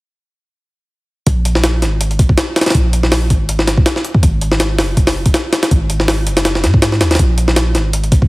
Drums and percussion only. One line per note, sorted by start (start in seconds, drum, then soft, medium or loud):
1.27 kick loud
1.27 closed hi-hat medium
1.45 closed hi-hat medium
1.55 snare medium
1.64 snare loud
1.64 closed hi-hat medium
1.82 snare soft
1.82 closed hi-hat medium
2.01 closed hi-hat medium
2.11 closed hi-hat soft
2.19 kick loud
2.19 closed hi-hat medium
2.29 kick medium
2.38 snare loud
2.38 closed hi-hat medium
2.56 snare medium
2.56 closed hi-hat medium
2.61 snare medium
2.61 closed hi-hat medium
2.66 snare medium
2.66 closed hi-hat medium
2.70 snare medium
2.70 closed hi-hat medium
2.75 kick loud
2.75 closed hi-hat medium
2.93 closed hi-hat medium
3.03 snare soft
3.12 snare loud
3.12 open hi-hat medium
3.30 kick medium
3.30 closed hi-hat medium
3.49 closed hi-hat medium
3.59 snare medium
3.67 snare medium
3.67 closed hi-hat medium
3.77 kick loud
3.86 snare loud
3.86 closed hi-hat medium
3.96 snare soft
4.05 closed hi-hat medium
4.14 kick medium
4.23 kick loud
4.23 closed hi-hat medium
4.41 closed hi-hat medium
4.52 snare medium
4.60 snare loud
4.60 closed hi-hat medium
4.79 snare loud
4.79 open hi-hat medium
4.97 kick medium
4.97 closed hi-hat medium
5.07 snare loud
5.07 open hi-hat medium
5.26 kick medium
5.26 closed hi-hat medium
5.34 snare loud
5.34 closed hi-hat medium
5.53 snare loud
5.53 closed hi-hat medium
5.63 snare loud
5.63 closed hi-hat medium
5.71 kick loud
5.71 closed hi-hat medium
5.90 closed hi-hat medium
6.00 snare soft
6.08 snare loud
6.08 open hi-hat medium
6.27 closed hi-hat medium
6.37 snare loud
6.37 closed hi-hat medium
6.45 snare loud
6.45 closed hi-hat medium
6.55 snare medium
6.64 snare medium
6.64 closed hi-hat medium
6.74 kick medium
6.82 snare loud
6.82 closed hi-hat medium
6.92 snare soft
7.01 snare loud
7.01 closed hi-hat medium
7.11 snare medium
7.11 closed hi-hat medium
7.15 snare medium
7.15 closed hi-hat medium
7.19 kick loud
7.19 closed hi-hat medium
7.38 closed hi-hat medium
7.48 snare medium
7.56 snare loud
7.56 closed hi-hat medium
7.75 snare soft
7.75 closed hi-hat medium
7.93 closed hi-hat medium
8.04 closed hi-hat soft
8.12 kick loud
8.12 closed hi-hat medium
8.22 kick medium